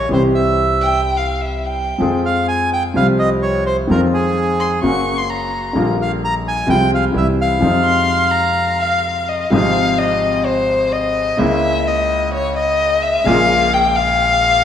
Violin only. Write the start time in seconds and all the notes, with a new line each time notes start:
0.81 G5
1.17 F5
1.41 E5
1.66 G5
4.60 C6
4.83 C#6
5.18 C6
5.30 A#5
7.84 C6
8.32 A#5
8.80 F5
9.29 D#5
9.53 F5
9.98 D#5
10.45 C5
10.92 D#5
11.39 E5
11.87 D#5
12.34 C#5
12.57 D#5
13.02 E5
13.25 F5
13.73 G5
13.96 F5